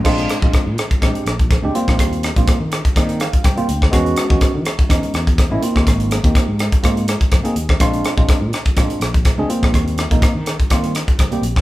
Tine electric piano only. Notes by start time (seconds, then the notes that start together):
0.04 G#3 C4 D4 F4
0.42 G#3 C4 D4 F4
0.68 F4
1.01 G#3 C4 D4 G4
1.25 D4 F4
1.63 G#3 C4 D4 G4
1.74 G3 A#3 C4 F4
2.36 G3 A#3 C4 F4
2.60 C4 D4
2.96 G3 A#3 C4 D#4
3.20 C4 D#4 F5
3.44 G5
3.56 G3 A#3 C4 F4
3.68 C4 G4
3.91 G#3 B3 C#4 F#4
4.29 G#3 B3 C#4 F#4
4.54 C#4 F#4
4.89 G#3 B3 C#4 D#4
5.14 C#4 F#4
5.50 G#3 B3 C#4 E4
5.62 A#3 C4 D#4 F4
6.24 A#3 C4 D#4 G4
6.48 D#4 G4
6.83 A#3 C4 D#4 F4
7.44 A#3 C4 D#4 G#4
7.55 D#4 F4
7.80 G#3 C4 D4 F4
8.17 G#3 C4 D4 F4
8.42 D4 G4
8.77 G#3 C4 D4 F4
9.01 D4 F4
9.38 G#3 C4 D4 G#4
9.48 G3 A#3 C4 F4
10.10 G3 A#3 C4 D#4
10.35 C4 D4
10.70 G3 A#3 C4 F4
10.95 C4 F4
11.31 G3 A#3 C4 G4
11.43 C4 G4